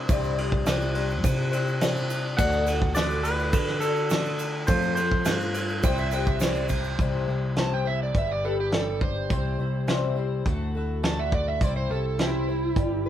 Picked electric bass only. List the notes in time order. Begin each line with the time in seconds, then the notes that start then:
0.09 C2
0.66 C2
1.24 C3
2.38 D2
2.96 D2
3.53 D3
4.68 F2
5.27 G2
5.84 C2
6.99 C2
7.28 C2
8.15 G1
9.30 C2
9.59 C2
10.46 D2
11.61 C2
11.90 C2
12.76 G1